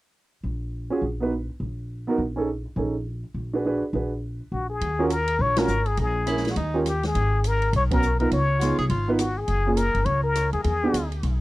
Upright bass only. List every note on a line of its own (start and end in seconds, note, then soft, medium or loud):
0.43 0.89 A#1 medium
1.02 1.48 A#1 medium
1.60 2.06 A#1 medium
2.18 2.64 A#1 medium
2.76 3.22 A#1 medium
3.34 3.81 A#1 medium
3.93 4.39 A#1 medium
4.52 4.79 A#1 medium
4.81 5.37 D#2 medium
5.39 5.67 A#1 medium
5.68 5.96 G#1 medium
5.97 6.53 A#1 medium
6.56 7.12 D#2 medium
7.15 7.70 G#1 medium
7.73 8.29 B1 medium
8.31 8.75 C#2 medium
8.78 8.89 C2 medium
8.90 9.45 G#1 medium
9.48 9.92 F#1 medium
9.95 10.05 G1 medium
10.06 10.50 C#2 medium
10.53 10.64 D#2 medium
10.65 10.92 E2 medium
10.94 11.21 D2 medium
11.23 11.41 B1 medium